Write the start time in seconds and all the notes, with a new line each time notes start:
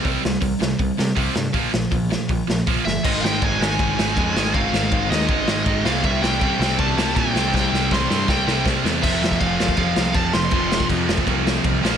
0.05 C2 C3 G3 C4, kick, open hi-hat
0.23 C2 C3 G3, snare
0.41 C2 C3 G3, kick, open hi-hat
0.60 C2 C3 G3, snare
0.79 C2 C3 G3, kick, open hi-hat
0.98 C3 G3, snare
1.15 C2 C3 G3 C4, kick, open hi-hat
1.35 G2 C3 G3, snare
1.53 A#1 A#2 F3 A#3, kick, open hi-hat
1.72 A#1 A#2 F3, snare
1.91 A#1 A#2 F3, kick, open hi-hat
2.11 A#2 F3, snare
2.29 A#1 A#2 F3, kick, open hi-hat
2.47 A#1 A#2 F3, snare
2.67 A#1 A#2 F3 A#3, kick, open hi-hat
2.85 G1 A#2 F3 E5, snare
3.04 G#1 G#2 D#3 G#3 C4 D#4 D#5, kick, crash
3.21 G#1 G#2 D#3 G#3 F5
3.25 G5, snare
3.42 G#1 G#2 D#3 G#3 G#5, kick, ride
3.60 G#1 G#2 D#3 G#3 C4 D#4 G#5, snare
3.79 G#1 G#2 D#3 G#3, kick, ride
3.99 G#1 G#2 D#3 G#3, snare
4.17 F2 G#2 D#3 G#3 C4 D#4, kick, ride
4.35 G#1 G#2 D#3 G#3, snare
4.54 G#1 G#2 D#3 G#3 C4 D#4 F5, kick, ride
4.73 G#1 G#2 D#3 G#3, snare
4.91 G#1 G#2 D#3 G#3, kick, ride
5.10 D#2 G#2 D#3 G#3 C4 D#4 D#5, snare
5.28 G#1 G#2 D#3 G#3, kick, ride
5.47 G#1 G#2 D#3 G#3, snare
5.66 G#1 G#2 D#3 G#3 C4 D#4, kick, ride
5.85 C2 C3 G3 C4 E4 F5, snare
6.04 C2 C3 G3 C4 E5, kick, ride
6.22 C2 C3 G3 C4 G5, snare
6.41 C2 C3 G3 C4 E4, kick, ride
6.59 C2 C3 G3 C4, snare
6.79 C2 C3 G3 C4 A5, kick, ride
6.96 C2 C3 G3 C4 E4, snare
7.16 A#2 C3 G3 C4 G5, kick, ride
7.34 C2 C3 G3 C4 E4, snare
7.54 C2 C3 G3 C4 G5, kick, snare
7.72 C2 C3 G3 C4, snare
7.91 C2 C3 G3 C4 E4 C6, kick, snare
8.10 G2 C3 G3 C4, snare
8.28 C2 C3 G3 C4 G5, kick, snare
8.46 C2 C3 G3 C4 E4, snare
8.64 C2 C3 G3 C4, kick, snare
8.84 E2 C3 G3 C4, snare
9.02 F1 F2 C3 F3 A3 C4 E5, kick, crash
9.21 F2, snare
9.31 kick
9.40 F1 F5, kick, crash
9.58 F1 F2 C3 F3 A3 C4, snare
9.68 kick
9.76 F1 F2 C3 F3 F5, kick, crash
9.96 C2, snare
10.14 F1 F2 C3 F3 A3 C4 A5, kick, crash
10.33 F1 C6, snare
10.51 F1 F2 C3 F3 A3 C4, kick, crash
10.72 snare
10.80 kick
10.89 F2, kick, crash
11.08 F1 F2 C3 F3 A3 C4, snare
11.18 kick
11.26 C2 F2 C3 F3, kick, crash
11.47 snare
11.64 C2 F2 C3 F3 A3 C4, kick, crash
11.83 A#1 A#2 F3 A#3 D4, snare